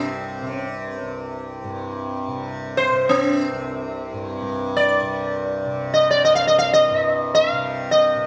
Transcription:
Already playing: tanpura C2 G2 C3, sitar C4
0.42 tanpura C3
0.49 sitar C#4
0.69 sitar C4
0.92 sitar C#4
1.03 tanpura C2
1.13 sitar C4
1.64 tanpura G2
2.28 tanpura C3
2.77 sitar C5
2.91 tanpura C3
3.09 sitar C4
3.53 tanpura C2
4.13 tanpura G2
4.41 tanpura G2
4.76 sitar D5
5.01 tanpura C3
5.66 tanpura C3
5.94 sitar D#5
6.11 sitar D5
6.25 tanpura C2, sitar D#5
6.35 sitar F5
6.47 sitar D#5
6.59 sitar F5
6.73 sitar D#5
6.91 tanpura G2
7.35 sitar F5
7.53 tanpura C3
7.91 sitar D#5
8.16 tanpura C3

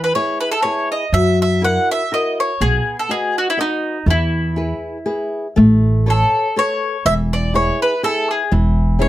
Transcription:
Already playing: nylon-string guitar E3
0.04 mandolin B4
0.15 nylon-string guitar E4 G#4 B4, mandolin C#5
0.41 mandolin B4
0.52 mandolin A4
0.62 nylon-string guitar E4 G#4 B4, mandolin C#5
0.92 mandolin D#5
1.13 upright bass F#2, nylon-string guitar F#3, mandolin E5
1.42 mandolin E5
1.62 nylon-string guitar E4 F#4 A#4, mandolin F#5
1.91 mandolin E5
2.12 nylon-string guitar E4 F#4 A#4, mandolin D#5
2.40 mandolin C#5
2.61 upright bass B1, nylon-string guitar B3, mandolin G#4
2.99 mandolin A4
3.09 nylon-string guitar F#4 B4 D#5, mandolin G#4
3.38 mandolin F#4
3.50 mandolin E4
3.57 mandolin D#4, nylon-string guitar F#4 B4 D#5
4.06 upright bass E2, nylon-string guitar E3
4.10 mandolin E4
4.56 nylon-string guitar E4 G#4 B4
5.06 nylon-string guitar E4 G#4 B4
5.56 upright bass A1, nylon-string guitar A3
6.06 nylon-string guitar A4 B4 C#5, mandolin A4
6.56 nylon-string guitar A4 B4 C#5, mandolin C#5
7.05 upright bass E1, nylon-string guitar E3, mandolin E5
7.33 mandolin D5
7.54 nylon-string guitar E4 G#4 B4, mandolin C#5
7.82 mandolin B4
8.03 nylon-string guitar E4 G#4 B4, mandolin A4
8.31 mandolin G#4
8.52 upright bass E1, nylon-string guitar E3
8.99 nylon-string guitar C#4 E4 G#4, mandolin C#5

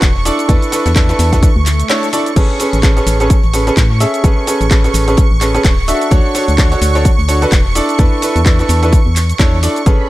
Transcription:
Already playing: analog synth pad C#6
0.02 fm bass E1, kick, snare, clap, closed hi-hat, shaker
0.16 snare
0.25 upright piano D4 E4 A4 D5, snare, closed hi-hat, open hi-hat, shaker
0.39 closed hi-hat, shaker
0.49 fm bass E2, upright piano D4 E4 A4 B4, kick, closed hi-hat, shaker
0.62 closed hi-hat, shaker
0.72 upright piano D4 E4 A4 B4, snare, closed hi-hat, open hi-hat, shaker
0.86 fm bass E2, snare, closed hi-hat, shaker
0.96 upright piano D4 E4 A4 B4, kick, snare, clap, closed hi-hat, shaker
1.09 upright piano D4 E4 A4 B4, snare, closed hi-hat, shaker
1.19 fm bass E2, snare, closed hi-hat, open hi-hat, shaker
1.33 upright piano D4 E4 A4 B4, kick, snare, closed hi-hat, shaker
1.43 kick, closed hi-hat, swell, shaker
1.56 fm bass D2
1.66 clap, closed hi-hat, open hi-hat, shaker
1.80 closed hi-hat, shaker
1.89 upright piano D4 E4 A4 C#5, snare, clap, closed hi-hat, open hi-hat, shaker
2.03 closed hi-hat, shaker
2.13 upright piano D4 E4 A4 D5, closed hi-hat, open hi-hat, shaker
2.26 closed hi-hat, shaker
2.36 fm bass A1, upright piano C#4 G#4 A4 B4, analog synth pad C#6, kick, closed hi-hat, crash, shaker
2.60 upright piano C#4 G#4 A4 B4, closed hi-hat, open hi-hat, shaker
2.73 fm bass A1, closed hi-hat, shaker
2.83 upright piano C#4 G#4 A4 B4, kick, snare, clap, closed hi-hat, shaker
2.96 upright piano C#4 G#4 A4 B4, snare, closed hi-hat, shaker
3.07 fm bass A1, closed hi-hat, open hi-hat, shaker
3.20 upright piano C#4 G#4 A4 B4, snare, closed hi-hat, shaker
3.30 kick, closed hi-hat, shaker
3.43 fm bass A1, closed hi-hat
3.53 upright piano C#4 G#4 A4 B4, closed hi-hat, open hi-hat, shaker
3.67 upright piano C#4 G#4 A4 B4, closed hi-hat, shaker
3.77 fm bass A2, kick, snare, clap, closed hi-hat, shaker
3.91 snare
4.00 upright piano C#4 G#4 A4 E5, snare, closed hi-hat, open hi-hat, shaker
4.14 closed hi-hat, shaker
4.24 fm bass A1, upright piano C#4 G#4 A4 B4, kick, closed hi-hat, shaker
4.47 upright piano C#4 G#4 A4 B4, closed hi-hat, open hi-hat, shaker
4.61 fm bass A1, closed hi-hat, shaker
4.71 upright piano C#4 G#4 A4 B4, kick, snare, clap, closed hi-hat, shaker
4.84 upright piano C#4 G#4 A4 B4, snare, closed hi-hat, shaker
4.94 fm bass A1, closed hi-hat, open hi-hat, shaker
5.08 upright piano C#4 G#4 A4 B4, closed hi-hat, shaker
5.17 kick, closed hi-hat, shaker
5.31 fm bass A1
5.41 upright piano C#4 G#4 A4 B4, clap, closed hi-hat, open hi-hat, shaker
5.55 upright piano C#4 G#4 A4 B4, closed hi-hat, shaker
5.64 fm bass D1, kick, snare, clap, closed hi-hat, open hi-hat, shaker
5.87 upright piano D4 F#4 A4 E5, closed hi-hat, open hi-hat, shaker
6.01 closed hi-hat, shaker
6.11 fm bass D2, upright piano D4 F#4 A4 C#5, kick, closed hi-hat, shaker
6.35 upright piano D4 F#4 A4 C#5, closed hi-hat, open hi-hat, shaker
6.48 fm bass D2, closed hi-hat, shaker
6.58 upright piano D4 F#4 A4 C#5, kick, snare, clap, closed hi-hat, shaker
6.72 upright piano D4 F#4 A4 C#5, snare, closed hi-hat, shaker
6.82 fm bass D2, closed hi-hat, open hi-hat, shaker
6.95 upright piano D4 F#4 A4 C#5, snare, closed hi-hat, shaker
7.05 kick, closed hi-hat, shaker
7.19 fm bass D2, closed hi-hat
7.28 upright piano D4 F#4 A4 C#5, closed hi-hat, open hi-hat, shaker
7.42 upright piano D4 F#4 A4 B4, closed hi-hat, shaker
7.52 fm bass E1, kick, snare, clap, closed hi-hat, shaker
7.65 snare
7.75 upright piano D4 E4 A4 D5, snare, closed hi-hat, open hi-hat, shaker
7.89 closed hi-hat, shaker
7.98 fm bass E2, upright piano D4 E4 A4 B4, kick, closed hi-hat, shaker
8.22 upright piano D4 E4 A4 B4, closed hi-hat, open hi-hat, shaker
8.36 fm bass E2, closed hi-hat, shaker
8.45 upright piano D4 E4 A4 B4, kick, snare, clap, closed hi-hat, shaker
8.59 upright piano D4 E4 A4 B4, snare, closed hi-hat, shaker
8.69 fm bass E2, closed hi-hat, open hi-hat, shaker
8.83 upright piano D4 E4 A4 B4, closed hi-hat, shaker
8.93 kick, closed hi-hat, shaker
9.06 fm bass E2
9.16 clap, closed hi-hat, open hi-hat, shaker
9.30 closed hi-hat, shaker
9.39 fm bass E2, upright piano D4 E4 A4 C#5, kick, snare, clap, closed hi-hat, open hi-hat, shaker
9.63 upright piano D4 E4 A4 D5, closed hi-hat, open hi-hat, shaker
9.76 closed hi-hat, shaker
9.86 fm bass A1, upright piano C#4 G#4 A4 B4, analog synth pad B5, kick, closed hi-hat, shaker

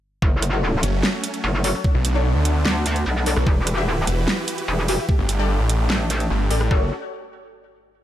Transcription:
0.22 wobble bass F#1, supersaw synth F#3 A3 C#4, kick
0.42 cross-stick, closed hi-hat
0.53 synth stab F#4 A4 C#5
0.83 detuned saw bass F#1, closed hi-hat
1.03 cross-stick, snare
1.24 closed hi-hat
1.34 closed hi-hat
1.44 wobble bass F#1
1.64 synth stab F#4 A4 C#5, open hi-hat
1.84 supersaw synth A3 B3 D4, kick
1.95 detuned saw bass B1
2.05 closed hi-hat
2.15 synth stab D4 A4 C#5
2.35 detuned saw bass D2
2.45 closed hi-hat
2.65 wobble bass D2, snare
2.86 closed hi-hat
2.96 closed hi-hat
3.06 wobble bass B1
3.26 synth stab D4 A4 C#5, open hi-hat
3.36 detuned saw bass B1, cross-stick
3.46 wobble bass E1, supersaw synth E3 E4 F#4 G4 B4, kick
3.67 cross-stick, closed hi-hat
3.77 synth stab F#4 G4 E5
4.07 detuned saw bass E1, closed hi-hat
4.28 cross-stick, snare
4.48 closed hi-hat
4.58 closed hi-hat
4.68 wobble bass E1
4.88 synth stab F#4 G4 E5, open hi-hat
5.09 supersaw synth A3 D4, kick
5.19 detuned saw bass G1
5.29 closed hi-hat
5.39 synth stab G4 A4 D5
5.59 detuned saw bass A1
5.69 closed hi-hat
5.90 wobble bass A1, snare
6.10 closed hi-hat
6.20 closed hi-hat
6.30 detuned saw bass G1
6.51 detuned saw bass A1, synth stab G4 A4 D5, open hi-hat
6.61 cross-stick
6.71 wobble bass F#1, supersaw synth A3 C#4 F#4, synth stab F#4 A4 C#5, kick

